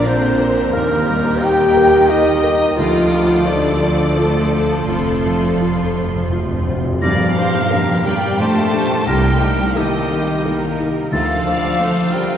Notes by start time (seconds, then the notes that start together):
Already playing: A#1 A#2 D3 A#3 D4 A#4 A#5
0.05 C4 D4 C5
0.40 A#4
0.72 D#2 D#3 A#3 G4 A#4
1.07 G3
1.41 D#4 G4 G5
1.77 A#4
2.09 D#4 G4 D#5
2.44 A#4
2.76 D2 F3 F4 A4 D6
3.13 F3
3.47 D4 F4 D5
3.83 D5
4.17 A3 F4 A4
4.52 D5
4.88 F1 F2 A3 F4 A4 C6
4.98 F2
5.06 F2
5.13 F2
5.22 F2
5.26 F2 F3
5.38 F2
5.46 F2
5.61 F2 F4
5.68 F2
5.76 F2
5.83 F2
5.91 F2
5.97 F2 C5
6.08 F2
6.15 F2
6.22 F2
6.29 F2 F4
6.38 F2
6.45 F2
6.53 F2
6.61 F2
6.67 F2 C5
6.76 F2
6.84 F2
6.92 F2
7.02 G2 F3 G3 G4 A#4 D5 F5 A#6, tam-tam
7.19 A#3
7.36 G3 D4 G4 C5
7.54 A#3
7.70 G3 A#3 D4 G4 A#4
7.88 A#3
8.05 G3 D4 G4 A#4 D5 G5
8.21 A#3
8.39 A#2 G3 A3 D4 G4 C5 A5
8.55 A#3
8.73 G3 D4 G4
8.89 A#3
9.07 C2 G3 G4 A#4 G5 A#6
9.24 A#3
9.41 G3 D#4 G4
9.58 A#3
9.75 D#3 G3 A#3 D#4 G4 A4 D#5
9.93 A#3
10.10 G3 D#4 G4
10.28 A#3
10.44 G3 A#3 D#4 G4 A#4
10.62 A#3
10.79 G3 D#4 G4
10.96 A#3
11.12 D2 D3 F3 A3 F4 A4 F5 A6
11.29 A3
11.45 A3 D4 C5 D5
11.62 A3
11.79 A3 D4 C5
11.97 A3
12.12 G3 A3 D4 A#4 C5 G5
12.31 A3